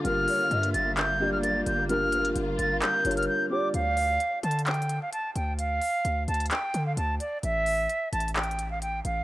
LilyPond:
<<
  \new Staff \with { instrumentName = "Flute" } { \time 4/4 \key d \minor \tempo 4 = 130 f'''4. a'''8 g'''8. f'''16 a'''8 g'''8 | f'''4. a'''8 g'''8. f'''16 g'''8 d'''8 | f''4. a''8 g''8. f''16 a''8 g''8 | f''4. a''8 g''8. f''16 a''8 d''8 |
e''4. a''8 g''8. f''16 g''8 f''8 | }
  \new Staff \with { instrumentName = "Soft synth lead" } { \time 4/4 \key d \minor r8 cis''8 e''4. d''4. | r8 bes'2. d''8 | r1 | r1 |
r1 | }
  \new Staff \with { instrumentName = "Felt piano" } { \time 4/4 \key d \minor <g d' f' bes'>4.~ <g d' f' bes'>16 r8. <g d' f' g'>4. | <g d' f' bes'>4.~ <g d' f' bes'>16 r8. <g d' f' cis''>4 <g d' f' g'>8 | r1 | r1 |
r1 | }
  \new Staff \with { instrumentName = "String section" } { \time 4/4 \key d \minor << { f'1 | f'1 | r1 | r1 |
r1 | } \\ { <d g bes>1~ | <d g bes>1 | r1 | r1 |
r1 | } >> }
  \new Staff \with { instrumentName = "808-style bass" } { \clef bass \time 4/4 \key d \minor g,,8 r8 g,8 g,,2 g,,8~ | g,,4 g,,8 g,,8 r8 g,,8 r4 | d,4 r8 d4~ d16 r8. d,8~ | d,8 r8 d,8 d,8 r8 d8 d,8 r8 |
a,,4 r8 a,,2 a,,8 | }
  \new DrumStaff \with { instrumentName = "Drums" } \drummode { \time 4/4 hh8 hho8 hh16 hh16 hh8 <hc hh>4 hh8 hh8 | hh8 <hh hho>16 hh16 hh8 hh8 <hc hh>8 hh32 hh32 hh32 hh32 r4 | hh8 hho8 \tuplet 3/2 { hh16 r16 r16 hh16 hh16 hh16 <hc hh>16 hh16 hh16 hh16 r16 r16 } hh8 hh8 | hh8 hho8 hh8 hh32 hh32 hh32 hh32 <hc hh>8 hh8 hh8 hh8 |
hh8 hho8 \tuplet 3/2 { hh16 r16 r16 hh16 hh16 hh16 <hc hh>16 hh16 hh16 hh16 r16 r16 } hh8 hh8 | }
>>